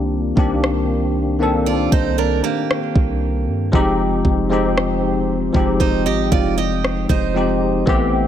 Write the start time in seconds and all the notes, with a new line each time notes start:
Already playing: C2 D#3 A#3 C4 D4 F4 G4 A#4
0.36 C2 D#3 A#3 C4 D4 G4, kick
0.64 cross-stick
1.39 D#3 A#3 C4 D4 A4
1.66 F4 D5
1.92 C2 D#4 C5, kick
2.18 D4 A#4
2.44 A#3 G4
2.71 cross-stick
2.96 C2, kick
3.47 G2
3.72 F1 F3 G#3 C4 D#4 G4, kick
4.25 F1, kick
4.49 F3 G#3 C4 D#4 G4
4.78 cross-stick
5.53 F1 F3 G#3 C4 D#4 G4, kick
5.80 D#4 C5, kick
6.06 G#1 G4 D#5
6.32 F1 F4 D5, kick
6.58 G4 D#5
6.84 cross-stick
7.09 F1 D#4 C5, kick
7.34 F3 G#3 C4 D#4 G4
7.86 A1 E3 A3 B3 C4 G4, kick